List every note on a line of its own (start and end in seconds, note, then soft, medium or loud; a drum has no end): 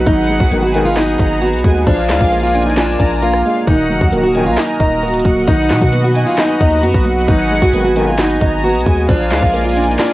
0.00 1.83 D#4 medium
0.00 1.83 B4 medium
0.06 0.39 G#1 loud
0.06 1.19 F#3 loud
0.06 0.38 D#4 medium
0.06 1.85 G#4 medium
0.06 1.85 F#5 loud
0.06 0.70 F#5 loud
0.06 kick loud
0.06 closed hi-hat medium
0.29 1.42 G#3 medium
0.40 0.51 B1 loud
0.40 0.60 F#4 medium
0.40 kick medium
0.51 1.17 G#1 loud
0.51 0.61 B1 medium
0.51 0.61 G#2 medium
0.51 0.61 D#3 loud
0.51 1.41 B3 medium
0.51 closed hi-hat medium
0.63 0.82 F#4 medium
0.74 0.88 B1 loud
0.74 0.88 G#2 loud
0.74 0.88 D#3 loud
0.74 1.18 D#4 medium
0.74 1.17 G#5 medium
0.74 closed hi-hat medium
0.85 0.95 F4 medium
0.96 1.39 D#4 medium
0.96 1.87 F#4 loud
0.96 snare loud
0.96 clap loud
0.96 closed hi-hat medium
1.02 closed hi-hat medium
1.08 closed hi-hat medium
1.14 closed hi-hat medium
1.19 1.55 G#1 loud
1.19 1.87 D#4 medium
1.19 1.62 A#5 medium
1.19 kick medium
1.19 closed hi-hat medium
1.42 1.87 B3 medium
1.42 1.84 F#4 medium
1.42 closed hi-hat soft
1.47 closed hi-hat medium
1.53 1.64 B1 loud
1.53 closed hi-hat medium
1.59 closed hi-hat medium
1.64 1.86 D#2 loud
1.64 1.87 G#3 medium
1.64 1.86 G#5 medium
1.64 kick loud
1.64 open hi-hat medium
1.87 2.11 A#1 loud
1.87 3.00 F3 loud
1.87 2.19 D4 loud
1.87 3.66 F4 medium
1.87 3.66 A#4 medium
1.87 3.66 D5 medium
1.87 2.51 F5 loud
1.87 3.66 G#5 loud
1.87 kick loud
1.87 closed hi-hat medium
2.09 2.20 D2 loud
2.09 3.22 G#3 medium
2.09 snare loud
2.09 clap medium
2.09 closed hi-hat medium
2.17 2.96 A#1 loud
2.17 2.40 F4 medium
2.17 kick medium
2.17 closed hi-hat medium
2.24 closed hi-hat medium
2.32 3.21 A#3 medium
2.32 closed hi-hat medium
2.39 2.63 F4 medium
2.39 closed hi-hat medium
2.47 closed hi-hat medium
2.54 2.98 D4 medium
2.54 2.97 G#5 medium
2.54 closed hi-hat medium
2.62 2.76 D#4 medium
2.62 closed hi-hat medium
2.70 closed hi-hat medium
2.77 3.20 D4 medium
2.77 3.67 F4 loud
2.77 snare loud
2.77 clap medium
2.77 closed hi-hat medium
2.85 closed hi-hat medium
2.92 closed hi-hat soft
3.00 3.43 A#1 loud
3.00 3.67 D4 medium
3.00 3.42 A#5 medium
3.00 kick medium
3.00 closed hi-hat medium
3.22 3.67 A#3 medium
3.22 3.65 F4 medium
3.22 closed hi-hat medium
3.33 cross-stick loud
3.33 closed hi-hat soft
3.45 3.68 G#3 medium
3.45 3.66 F5 medium
3.67 3.91 D#1 loud
3.67 4.80 D#3 loud
3.67 3.99 D#4 loud
3.67 9.05 F#4 medium
3.67 5.46 A#4 medium
3.67 9.05 D#5 medium
3.67 4.31 F#5 loud
3.67 5.46 A#5 loud
3.67 kick loud
3.67 closed hi-hat medium
3.90 4.01 F1 loud
3.90 5.03 F#3 medium
4.01 4.12 D#2 loud
4.01 4.21 F#4 medium
4.01 kick medium
4.12 4.48 D#1 loud
4.12 4.22 A#1 medium
4.12 4.22 F#2 medium
4.12 4.22 D#3 loud
4.12 5.01 A#3 medium
4.12 closed hi-hat medium
4.24 4.43 F#4 medium
4.35 4.49 A#1 loud
4.35 4.49 F#2 loud
4.35 4.49 D#3 loud
4.35 4.78 D#4 medium
4.35 4.77 G#5 medium
4.35 closed hi-hat medium
4.46 4.57 A#1 loud
4.46 4.56 F4 medium
4.58 5.00 D#4 medium
4.58 5.48 D#5 loud
4.58 snare loud
4.58 clap loud
4.58 closed hi-hat medium
4.63 closed hi-hat medium
4.69 closed hi-hat medium
4.74 closed hi-hat soft
4.80 5.23 D#1 loud
4.80 5.48 D#4 medium
4.80 5.22 A#5 medium
4.80 kick medium
4.80 closed hi-hat medium
5.03 5.48 A#3 medium
5.03 5.45 F#4 medium
5.03 closed hi-hat soft
5.08 closed hi-hat medium
5.14 closed hi-hat medium
5.20 closed hi-hat medium
5.25 5.47 D#1 loud
5.25 5.48 F#3 medium
5.25 5.47 F#5 medium
5.25 kick medium
5.25 open hi-hat medium
5.48 5.72 B1 loud
5.48 6.61 D#3 loud
5.48 5.80 D#4 loud
5.48 9.05 B4 medium
5.48 6.11 F#5 loud
5.48 7.26 F#5 loud
5.48 kick loud
5.48 closed hi-hat medium
5.70 5.81 B2 loud
5.70 6.83 F#3 medium
5.70 snare loud
5.70 clap medium
5.70 closed hi-hat medium
5.82 6.25 B2 loud
5.82 6.01 F#4 medium
5.82 kick medium
5.93 6.82 B3 medium
5.93 closed hi-hat medium
6.04 6.24 F#4 medium
6.15 6.59 D#4 medium
6.15 6.58 G#5 medium
6.15 closed hi-hat medium
6.26 6.36 F4 medium
6.38 6.80 D#4 loud
6.38 7.28 D#5 loud
6.38 snare loud
6.38 clap medium
6.38 closed hi-hat medium
6.60 6.85 D#2 loud
6.60 7.28 D#4 medium
6.60 7.03 A#5 medium
6.60 kick medium
6.60 closed hi-hat medium
6.83 6.94 F#2 loud
6.83 7.28 B3 medium
6.83 7.25 F#4 medium
6.83 closed hi-hat medium
6.94 7.27 B1 loud
6.94 kick loud
7.05 7.27 F#3 medium
7.05 7.27 F#5 medium
7.28 7.61 G#1 loud
7.28 8.41 F#3 loud
7.28 7.60 D#4 loud
7.28 7.92 F#5 loud
7.28 9.07 G#5 medium
7.28 kick loud
7.28 closed hi-hat medium
7.51 8.64 G#3 medium
7.62 7.73 B1 loud
7.62 7.82 F#4 medium
7.62 kick medium
7.73 8.38 G#1 loud
7.73 7.83 B1 medium
7.73 7.83 G#2 medium
7.73 7.83 D#3 loud
7.73 8.62 B3 medium
7.73 closed hi-hat medium
7.85 8.04 F#4 medium
7.96 8.10 B1 loud
7.96 8.10 G#2 medium
7.96 8.10 D#3 loud
7.96 8.39 D#4 medium
7.96 8.38 G#5 medium
7.96 closed hi-hat medium
8.07 8.17 F4 medium
8.18 8.61 D#4 loud
8.18 9.09 F#4 loud
8.18 snare loud
8.18 clap medium
8.18 closed hi-hat medium
8.24 closed hi-hat medium
8.30 closed hi-hat medium
8.35 closed hi-hat medium
8.41 8.76 G#1 loud
8.41 9.09 D#4 medium
8.41 8.83 A#5 medium
8.41 kick medium
8.41 closed hi-hat medium
8.64 9.09 B3 medium
8.64 9.06 F#4 medium
8.64 closed hi-hat soft
8.69 closed hi-hat medium
8.75 8.86 B1 loud
8.75 closed hi-hat medium
8.81 closed hi-hat medium
8.86 9.08 D#2 loud
8.86 9.09 G#3 medium
8.86 9.08 G#5 medium
8.86 kick medium
8.86 open hi-hat medium
9.08 9.33 A#1 loud
9.08 10.13 F3 loud
9.08 9.40 D4 loud
9.08 10.13 F4 medium
9.08 10.13 A#4 medium
9.08 10.13 D5 medium
9.08 9.72 F5 loud
9.08 10.13 G#5 medium
9.08 kick loud
9.08 closed hi-hat medium
9.31 9.42 D2 loud
9.31 10.13 G#3 medium
9.31 snare loud
9.31 clap medium
9.31 closed hi-hat medium
9.39 9.97 A#1 loud
9.39 9.62 F4 medium
9.39 kick medium
9.39 closed hi-hat medium
9.46 closed hi-hat medium
9.54 10.13 A#3 medium
9.54 closed hi-hat medium
9.61 9.85 F4 medium
9.61 closed hi-hat medium
9.69 closed hi-hat medium
9.76 10.13 D4 medium
9.76 10.13 G#5 medium
9.76 closed hi-hat medium
9.84 9.97 D#4 medium
9.84 closed hi-hat medium
9.91 closed hi-hat medium
9.99 10.13 D4 medium
9.99 10.13 F4 loud
9.99 snare loud
9.99 clap medium
9.99 closed hi-hat medium
10.06 closed hi-hat medium